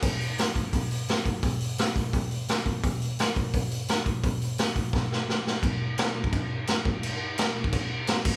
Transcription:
\new DrumStaff \with { instrumentName = "Drums" } \drummode { \time 4/4 \tempo 4 = 171 <cymc hho bd>8 hho8 <hho sn>8 <hho bd>8 <hho bd>8 hho8 <hho sn>8 <hho bd>8 | <hho bd>8 hho8 <hho sn>8 <hho bd>8 <hho bd>8 hho8 <hho sn>8 <hho bd>8 | <hho bd>8 hho8 <hho sn>8 <hho bd>8 <hho bd>8 hho8 <hho sn>8 <hho bd>8 | <hho bd>8 hho8 <hho sn>8 <hho bd>8 <bd sn>8 sn8 sn8 sn8 |
<cymc bd>4 <cymc sn>8. bd16 <cymc bd>4 <cymc sn>8 bd8 | cymc4 <cymc sn>8. bd16 <cymc bd>4 <cymc sn>8 <cymc bd>8 | }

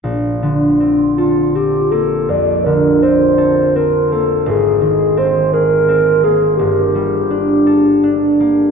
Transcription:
<<
  \new Staff \with { instrumentName = "Clarinet" } { \time 12/8 \key g \phrygian \tempo 4. = 55 r4. f'8 g'8 a'8 d''8 bes'8 c''4 bes'8 a'8 | aes'4 c''8 bes'4 aes'8 g'2. | }
  \new Staff \with { instrumentName = "Harp" } { \time 12/8 \key g \phrygian bes,,8 d8 c'8 a'8 c'8 bes8 f,8 d8 c'8 a'8 c'8 bes8 | aes,,8 ees8 c'8 aes'8 c'8 bes8 g,,8 g8 d'8 a'8 d'8 bes8 | }
>>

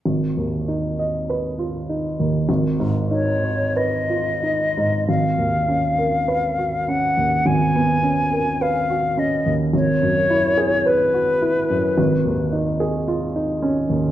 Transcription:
<<
  \new Staff \with { instrumentName = "Flute" } { \time 4/4 \key gis \dorian \tempo 4 = 52 r2 r8 cis''8 dis''4 | eis''4. fis''8 gis''4 eis''8 dis''8 | cis''4 b'4. r4. | }
  \new Staff \with { instrumentName = "Grand piano" } { \time 4/4 \key gis \dorian gis,,16 dis,16 dis'16 dis''16 b'16 eis'16 dis'16 dis,16 gis,,16 gis,16 dis'16 cis''16 b'16 eis'16 dis'16 gis,16 | gis,,16 dis,16 cis'16 ais'16 b'16 fis'16 cis'16 dis,16 gis,,16 b16 cis'16 ais'16 b'16 fis'16 cis'16 dis,16 | gis,,16 fis,16 e'16 gis'16 b'16 fis'16 e'16 fis,16 gis,,16 dis,16 dis'16 gis'16 eis'16 dis'16 cis'16 dis,16 | }
>>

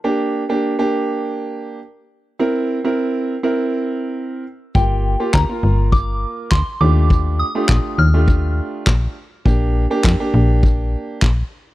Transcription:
<<
  \new Staff \with { instrumentName = "Synth bell" } { \time 4/4 \key bes \major \tempo 4 = 102 r1 | r1 | g''4 bes''4 d'''4 c'''8 d'''8~ | d'''8 ees'''4 f'''4 r4. |
r1 | }
  \new Staff \with { instrumentName = "Grand piano" } { \time 4/4 \key bes \major <bes d' g'>8. <bes d' g'>8 <bes d' g'>4.~ <bes d' g'>16 r4 | <c' e' bes'>8. <c' e' bes'>8. r16 <c' e' bes'>4.~ <c' e' bes'>16 r8 | <bes f' g'>8. <bes f' g'>8 <bes f' bes'>4.~ <bes f' bes'>16 r8 <a d' f' g'>8~ | <a d' f' g'>8 r16 <a d' f' g'>8. r16 <a d' f' g'>4.~ <a d' f' g'>16 r8 |
<bes d' g'>8. <bes d' g'>8 <bes d' g'>4.~ <bes d' g'>16 r4 | }
  \new Staff \with { instrumentName = "FM bass" } { \clef bass \time 4/4 \key bes \major r1 | r1 | g,,4 d,16 r16 g,,4. d,16 r16 ees,8~ | ees,4 bes,,16 r16 ees,4. bes,,8 r8 |
bes,,4 f,16 r16 bes,,4. bes,,8 r8 | }
  \new DrumStaff \with { instrumentName = "Drums" } \drummode { \time 4/4 r4 r4 r4 r4 | r4 r4 r4 r4 | bd4 <hc bd sn>4 bd4 <hc bd sn>4 | bd4 <hc bd sn>4 bd4 <hc bd sn>4 |
bd4 <hc bd sn>4 bd4 <hc bd sn>4 | }
>>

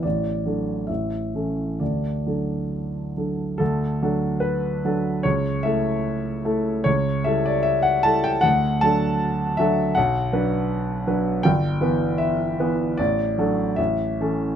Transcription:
\new Staff \with { instrumentName = "Grand piano" } { \time 2/4 \key d \major \tempo 4 = 75 << { d''4 e''4 | d''4 r4 | a'4 b'4 | cis''8 e''4 r8 |
cis''8 e''16 d''16 e''16 fis''16 a''16 g''16 | fis''8 a''4 e''8 | fis''2 | g''4 e''8 r8 |
d''4 e''4 | } \\ { a,,8 <fis d' a'>8 a,,8 <e cis' a'>8 | d,8 <fis d' a'>4 <fis d' a'>8 | d,8 <fis d' a'>4 <fis d' a'>8 | cis,8 <a e' a'>4 <a e' a'>8 |
cis,8 <g e' a'>4 <g e' a'>8 | d,8 <fis d' a'>4 <fis d' a'>8 | b,,8 <fis d' b'>4 <fis d' b'>8 | g,,8 <e b b'>4 <e b b'>8 |
a,,8 <fis d' a'>8 a,,8 <e cis' a'>8 | } >> }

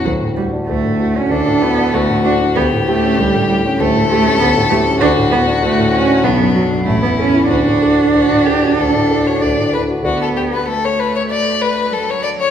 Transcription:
<<
  \new Staff \with { instrumentName = "Violin" } { \time 4/4 \key d \major \tempo 4 = 96 r2 a'4 fis'4 | g'2 a'2 | fis'2 d'4 e'4 | fis'4 fis'8 g'8 a'8. cis''16 d''8 b'8 |
fis'16 a'16 g'16 b'16 a'16 cis''16 b'16 cis''16 d''8 b'8 a'16 cis''16 d''16 cis''16 | }
  \new Staff \with { instrumentName = "Grand piano" } { \time 4/4 \key d \major d,16 a,16 fis'16 d'16 d,16 a,16 fis'16 d'16 d,16 a,16 fis'16 d'16 d,16 a,16 fis'16 d'16 | d,16 a,16 g'16 cis'16 d,16 a,16 g'16 cis'16 d,16 a,16 g'16 cis'16 d,16 a,16 g'16 cis'16 | d,16 a,16 fis'16 d'16 d,16 a,16 fis'16 d'16 b,,16 fis,16 fis'16 d'16 a,,16 e,16 a'16 e'16 | d,16 a,16 a'16 fis'16 d,16 a,16 a'16 fis'16 d,16 a,16 a'16 fis'16 d,16 a,16 a'16 fis'16 |
<d, fis' a' d''>1 | }
  \new Staff \with { instrumentName = "Cello" } { \time 4/4 \key d \major fis8 g8 a8. cis'16 d'8 b8 a8 d'8 | b8 a8 g8 g8 a8 a8 b8 a8 | d'8 b8 a8 cis'8 b8 fis8 a16 b16 cis'8 | d'2.~ d'8 r8 |
b4 a2 fis4 | }
>>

